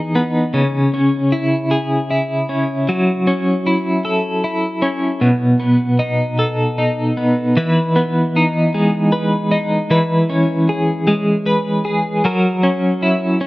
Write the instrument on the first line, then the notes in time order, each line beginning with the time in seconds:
clean electric guitar
Already playing: E3 B3 D#4 G#4
0.15 B3
0.54 C#3
0.94 C#4
1.32 E4
1.71 G#4
2.11 E4
2.49 C#4
2.89 F#3
3.27 C#4
3.67 E4
4.05 A4
4.44 E4
4.82 C#4
5.21 B2
5.60 B3
5.99 D#4
6.39 A4
6.78 D#4
7.17 B3
7.57 E3 B4
7.96 B3
8.36 D#4
8.74 G#3
9.12 B4
9.52 D#4
9.91 E3 B4
10.30 C#4
10.69 G#4
11.07 G#3
11.46 B4
11.85 G#4
12.25 F#3 A#4
12.63 C#4
13.03 E4
13.41 C#4